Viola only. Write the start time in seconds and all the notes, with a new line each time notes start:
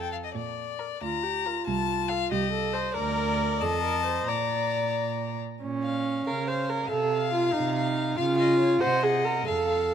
1.03 F4
1.23 G4
1.45 F4
2.31 G4
2.52 A4
2.73 C5
2.94 A#4
3.62 A4
3.84 A#4
4.06 C5
4.28 D5
5.63 C#4
6.27 A#4
6.48 C5
6.69 A#4
6.91 A4
7.33 F4
7.53 D#4
8.16 F4
8.81 C5
9.03 G#4
9.25 A#4
9.47 A4